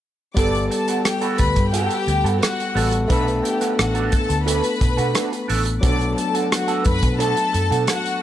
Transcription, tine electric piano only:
0.34 2.71 G3 medium
0.34 2.72 B3 medium
0.34 2.72 G4 medium
0.39 2.73 A4 medium
2.75 3.10 G3 soft
2.75 3.08 B3 soft
2.75 3.10 F#4 soft
2.75 3.11 A4 medium
3.08 5.78 A3 medium
3.08 5.79 B3 medium
3.08 5.79 D4 medium
3.12 5.80 A4 medium
5.81 8.22 F#3 medium
5.81 8.22 B3 medium
5.81 8.22 D4 medium
5.81 8.22 A4 medium

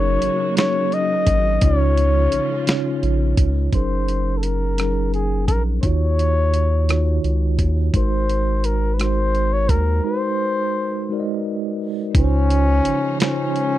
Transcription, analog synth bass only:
0.00 0.18 F#1 loud
0.22 0.29 G#1 soft
1.27 1.59 G#1 medium
1.62 2.28 C#2 loud
2.33 2.40 A#1 soft
3.03 3.34 A#1 medium
3.38 3.69 C#2 medium
3.73 5.50 F#1 medium
5.48 5.80 A#1 medium
5.83 7.19 D#2 loud
7.24 7.61 C#2 medium
7.59 7.90 D#2 medium
7.94 9.71 G#1 medium
9.69 10.01 D#2 medium
12.15 12.81 C#2 loud
12.86 12.92 G#1 soft

